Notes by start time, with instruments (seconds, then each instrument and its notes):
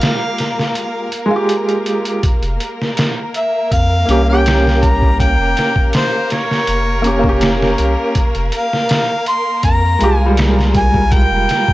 Already playing: felt piano G#3 F4 G4, violin section A#3 A#4, harmonica F5
0.01 snare, closed hi-hat
0.38 snare, closed hi-hat
0.59 snare
0.75 closed hi-hat
1.12 closed hi-hat
1.26 felt piano G#3
1.31 felt piano F4
1.36 felt piano G4
1.49 closed hi-hat
1.69 closed hi-hat
1.86 closed hi-hat
2.05 closed hi-hat
2.23 violin section A#3 A#4, kick, closed hi-hat
2.43 analog synth bass F1, closed hi-hat
2.60 closed hi-hat
2.82 snare
2.97 snare, closed hi-hat
3.34 harmonica E5, closed hi-hat
3.72 analog synth bass F2, harmonica F5, kick, closed hi-hat
4.06 analog synth bass C2, felt piano A#3 C#4, closed hi-hat
4.11 felt piano G4
4.23 felt piano A#3
4.28 felt piano C#4, harmonica G5
4.33 felt piano G4
4.46 snare, closed hi-hat
4.67 snare
4.83 harmonica A#5, kick, closed hi-hat
5.02 kick
5.20 harmonica G5, kick, closed hi-hat
5.39 analog synth bass F1
5.57 snare, closed hi-hat
5.76 kick
5.93 harmonica C5, snare, closed hi-hat
6.30 harmonica C#5, snare, closed hi-hat
6.51 snare
6.67 analog synth bass F1, closed hi-hat
7.02 felt piano A#3 C#4, closed hi-hat
7.07 felt piano G4
7.19 felt piano A#3
7.24 felt piano C#4, kick
7.29 felt piano G4
7.41 snare, closed hi-hat
7.62 snare
7.78 analog synth bass C2, closed hi-hat
8.15 kick, closed hi-hat
8.35 analog synth bass F1, closed hi-hat
8.52 harmonica F5, closed hi-hat
8.73 snare
8.89 snare, closed hi-hat
9.26 harmonica C6, closed hi-hat
9.63 analog synth bass F2, harmonica A#5, kick, closed hi-hat
9.99 analog synth bass C2, felt piano G#3 F4, closed hi-hat
10.04 felt piano G4
10.16 felt piano G#3, harmonica G#5
10.21 felt piano F4
10.26 felt piano G3
10.37 snare, closed hi-hat
10.59 snare
10.75 harmonica G#5, kick, closed hi-hat
10.94 kick
11.12 harmonica G5, kick, closed hi-hat
11.31 analog synth bass F1
11.49 snare, closed hi-hat
11.68 kick